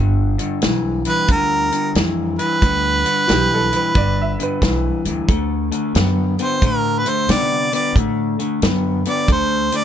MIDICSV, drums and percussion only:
0, 0, Header, 1, 2, 480
1, 0, Start_track
1, 0, Key_signature, 1, "major"
1, 0, Tempo, 665927
1, 1891, Time_signature, 4, 2, 24, 8
1, 7095, End_track
2, 0, Start_track
2, 0, Title_t, "Drums"
2, 281, Note_on_c, 9, 42, 68
2, 353, Note_off_c, 9, 42, 0
2, 444, Note_on_c, 9, 42, 91
2, 453, Note_on_c, 9, 38, 109
2, 516, Note_off_c, 9, 42, 0
2, 525, Note_off_c, 9, 38, 0
2, 756, Note_on_c, 9, 42, 64
2, 828, Note_off_c, 9, 42, 0
2, 924, Note_on_c, 9, 42, 76
2, 928, Note_on_c, 9, 36, 104
2, 996, Note_off_c, 9, 42, 0
2, 1000, Note_off_c, 9, 36, 0
2, 1243, Note_on_c, 9, 42, 61
2, 1315, Note_off_c, 9, 42, 0
2, 1407, Note_on_c, 9, 42, 74
2, 1416, Note_on_c, 9, 38, 96
2, 1479, Note_off_c, 9, 42, 0
2, 1488, Note_off_c, 9, 38, 0
2, 1723, Note_on_c, 9, 42, 54
2, 1795, Note_off_c, 9, 42, 0
2, 1889, Note_on_c, 9, 42, 74
2, 1890, Note_on_c, 9, 36, 110
2, 1961, Note_off_c, 9, 42, 0
2, 1962, Note_off_c, 9, 36, 0
2, 2204, Note_on_c, 9, 42, 55
2, 2276, Note_off_c, 9, 42, 0
2, 2370, Note_on_c, 9, 42, 77
2, 2378, Note_on_c, 9, 38, 110
2, 2442, Note_off_c, 9, 42, 0
2, 2450, Note_off_c, 9, 38, 0
2, 2686, Note_on_c, 9, 42, 57
2, 2758, Note_off_c, 9, 42, 0
2, 2847, Note_on_c, 9, 42, 73
2, 2850, Note_on_c, 9, 36, 103
2, 2919, Note_off_c, 9, 42, 0
2, 2922, Note_off_c, 9, 36, 0
2, 3170, Note_on_c, 9, 42, 61
2, 3242, Note_off_c, 9, 42, 0
2, 3328, Note_on_c, 9, 42, 77
2, 3329, Note_on_c, 9, 36, 79
2, 3337, Note_on_c, 9, 38, 99
2, 3400, Note_off_c, 9, 42, 0
2, 3401, Note_off_c, 9, 36, 0
2, 3409, Note_off_c, 9, 38, 0
2, 3642, Note_on_c, 9, 42, 64
2, 3714, Note_off_c, 9, 42, 0
2, 3810, Note_on_c, 9, 36, 96
2, 3811, Note_on_c, 9, 42, 71
2, 3882, Note_off_c, 9, 36, 0
2, 3883, Note_off_c, 9, 42, 0
2, 4123, Note_on_c, 9, 42, 59
2, 4196, Note_off_c, 9, 42, 0
2, 4288, Note_on_c, 9, 42, 85
2, 4297, Note_on_c, 9, 38, 98
2, 4360, Note_off_c, 9, 42, 0
2, 4369, Note_off_c, 9, 38, 0
2, 4604, Note_on_c, 9, 42, 57
2, 4676, Note_off_c, 9, 42, 0
2, 4771, Note_on_c, 9, 42, 89
2, 4772, Note_on_c, 9, 36, 94
2, 4843, Note_off_c, 9, 42, 0
2, 4844, Note_off_c, 9, 36, 0
2, 5088, Note_on_c, 9, 42, 65
2, 5160, Note_off_c, 9, 42, 0
2, 5254, Note_on_c, 9, 42, 78
2, 5262, Note_on_c, 9, 38, 100
2, 5326, Note_off_c, 9, 42, 0
2, 5334, Note_off_c, 9, 38, 0
2, 5571, Note_on_c, 9, 42, 66
2, 5643, Note_off_c, 9, 42, 0
2, 5735, Note_on_c, 9, 36, 97
2, 5741, Note_on_c, 9, 42, 79
2, 5807, Note_off_c, 9, 36, 0
2, 5813, Note_off_c, 9, 42, 0
2, 6051, Note_on_c, 9, 42, 54
2, 6124, Note_off_c, 9, 42, 0
2, 6214, Note_on_c, 9, 42, 82
2, 6222, Note_on_c, 9, 38, 103
2, 6286, Note_off_c, 9, 42, 0
2, 6294, Note_off_c, 9, 38, 0
2, 6526, Note_on_c, 9, 42, 60
2, 6598, Note_off_c, 9, 42, 0
2, 6692, Note_on_c, 9, 36, 96
2, 6692, Note_on_c, 9, 42, 71
2, 6764, Note_off_c, 9, 36, 0
2, 6764, Note_off_c, 9, 42, 0
2, 7007, Note_on_c, 9, 42, 64
2, 7079, Note_off_c, 9, 42, 0
2, 7095, End_track
0, 0, End_of_file